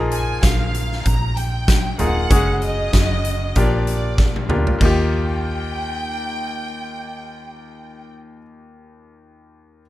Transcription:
Already playing: fingered electric bass A#1, grand piano A#2 F3 A#3 D#4 F4 G#4
0.11 violin section G#5, closed hi-hat
0.43 fingered electric bass A#1, violin section F5, kick, snare, closed hi-hat
0.74 closed hi-hat
0.92 snare
1.05 fingered electric bass A#1, violin section A#5, kick, closed hi-hat
1.37 violin section G5, closed hi-hat
1.68 kick, snare, closed hi-hat
1.98 fingered electric bass D#1, grand piano A#3 D#4 F4 G#4, violin section F#5, closed hi-hat, floor tom
2.30 fingered electric bass F#1, grand piano C#3 G#3 C#4 F#4 G#4, kick, closed hi-hat
2.62 violin section D#5, closed hi-hat
2.93 fingered electric bass F#1, kick, snare, closed hi-hat
3.25 closed hi-hat
3.55 fingered electric bass A#1, grand piano A#2 F3 A#3 D4 F4 G4, violin section D5, kick, closed hi-hat
3.87 violin section D5, closed hi-hat
4.18 kick, snare
4.36 high tom
4.49 fingered electric bass D2, grand piano A#3 D4 F4 G4, mid tom
4.67 floor tom
4.78 fingered electric bass D#2, grand piano D#2 A#3 D#4, kick, crash
4.83 grand piano F4 G4, violin section G5

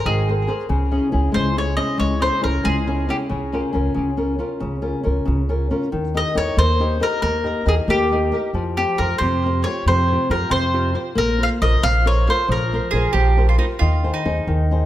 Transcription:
Already playing: nylon-string guitar G#4 A#4 C5
0.05 upright bass G#1, nylon-string guitar D#3, mandolin G#4
0.29 nylon-string guitar G#4 A#4 C5
0.47 nylon-string guitar G#4 A#4 C5
0.69 upright bass C#2, nylon-string guitar C#3
0.91 nylon-string guitar C#4 E4 G#4
1.12 upright bass C#2, nylon-string guitar C#4 E4 G#4
1.32 upright bass C#2, nylon-string guitar G#3, mandolin C5
1.56 nylon-string guitar C#4 E4 G#4, mandolin C#5
1.77 nylon-string guitar C#4 E4 G#4, mandolin D#5
1.98 upright bass C#2, nylon-string guitar G#3, mandolin C#5
2.21 nylon-string guitar C#4 E4 G#4, mandolin C5
2.41 upright bass C#2, nylon-string guitar C#4 E4 G#4, mandolin A#4
2.63 upright bass C#2, nylon-string guitar G#3, mandolin G#4
2.87 nylon-string guitar C#4 E4 G#4
3.08 nylon-string guitar C#4 E4 G#4, mandolin G4
3.30 upright bass C#2, nylon-string guitar C#3
3.53 nylon-string guitar C#4 F4 A#4
3.73 upright bass C#2, nylon-string guitar C#4 F4 A#4
3.94 upright bass C#2, nylon-string guitar C#3
4.17 nylon-string guitar C#4 F4 A#4
4.39 nylon-string guitar C#4 F4 A#4
4.60 upright bass C#2, nylon-string guitar C#3
4.82 nylon-string guitar C#4 F4 A#4
5.03 upright bass C#2, nylon-string guitar C#4 F4 A#4
5.26 upright bass C#2, nylon-string guitar C#3
5.49 nylon-string guitar C#4 F4 A#4
5.71 nylon-string guitar C#4 F4 A#4
5.92 upright bass D#2, nylon-string guitar D#3
6.14 nylon-string guitar D#4 G4 A#4, mandolin D#5
6.35 upright bass D#2, nylon-string guitar D#4 G4 A#4, mandolin C#5
6.57 upright bass D#2, nylon-string guitar A#3, mandolin C5
6.80 nylon-string guitar D#4 G4 A#4
7.00 nylon-string guitar D#4 G4 A#4, mandolin A#4
7.22 upright bass D#2, nylon-string guitar A#3, mandolin A#4
7.44 nylon-string guitar D#4 G4 A#4
7.66 upright bass D#2, nylon-string guitar D#4 G4 A#4, mandolin G#4
7.88 upright bass D#2, nylon-string guitar A#3, mandolin G4
8.12 nylon-string guitar D#4 G4 A#4
8.32 nylon-string guitar D#4 G4 A#4
8.53 upright bass F2, nylon-string guitar F3
8.77 nylon-string guitar F4 G4 C5, mandolin G4
8.98 upright bass F2, nylon-string guitar F4 G4 C5, mandolin A#4
9.18 upright bass F2, nylon-string guitar C3, mandolin C5
9.45 nylon-string guitar F4 G4 C5
9.64 nylon-string guitar F4 G4 C5, mandolin C#5
9.86 upright bass F2, nylon-string guitar C3, mandolin C5
10.11 nylon-string guitar F4 G4 C5
10.30 upright bass F2, nylon-string guitar F4 G4 C5, mandolin A#4
10.50 upright bass F2, nylon-string guitar C3, mandolin C5
10.74 nylon-string guitar F4 G4 C5
10.94 nylon-string guitar F4 G4 C5
11.15 upright bass A#1, nylon-string guitar A#3, mandolin A#4
11.38 nylon-string guitar F4 A#4 C5
11.43 mandolin F5
11.61 upright bass A#1, nylon-string guitar F4 A#4 C5, mandolin D#5
11.82 upright bass A#1, nylon-string guitar F3, mandolin F5
12.05 nylon-string guitar F4 A#4 C5, mandolin C#5
12.28 nylon-string guitar F4 A#4 C5, mandolin C5
12.48 upright bass A#1, nylon-string guitar F3, mandolin A#4
12.73 nylon-string guitar F4 A#4 C5
12.91 upright bass A#1, nylon-string guitar F4 A#4 C5, mandolin G#4
13.13 upright bass A#1, nylon-string guitar F3, mandolin G4
13.37 nylon-string guitar F4 A#4 C5
13.49 mandolin F4
13.58 mandolin D#4, nylon-string guitar F4 A#4 C5
13.79 upright bass D#2, nylon-string guitar D#3, mandolin F4
14.03 nylon-string guitar D#4 G#4 C5
14.14 mandolin D#4
14.25 upright bass D#2, nylon-string guitar D#4 G#4 C5
14.47 upright bass D#2, nylon-string guitar D#3
14.71 nylon-string guitar D#4 G#4 C5

